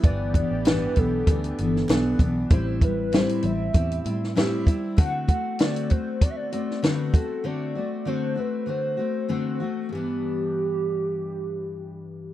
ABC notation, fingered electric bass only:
X:1
M:4/4
L:1/16
Q:"Swing 16ths" 1/4=97
K:G
V:1 name="Fingered electric bass" clef=bass
G,,,3 A,,,3 B,,,2 D,,2 G,,,2 B,,,2 B,,,2 | A,,,4- A,,, z A,,,2 E,,2 A,,4 z2 | z16 | z16 |
z16 |]